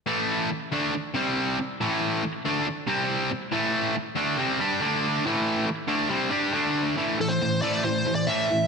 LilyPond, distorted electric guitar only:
\new Staff \with { instrumentName = "Distorted electric guitar" } { \clef bass \time 4/4 \key a \minor \tempo 4 = 139 <a, e a>4 r8 <d a d'>8 r8 <c g c'>4 r8 | <a, e a>4 r8 <d a d'>8 r8 <c g c'>4 r8 | <a, e a>4 r8 <d a d'>8 <c g c'>8 <g d' g'>8 <d a d'>4 | <a, e a>4 r8 <d a d'>8 <c g c'>8 <g d' g'>8 <d a d'>4 |
<a, e a>8 <a, e>8 <a, e>8 <a, e a>8 <a, e>8 <a, e>8 <a, e a>8 <a, e>8 | }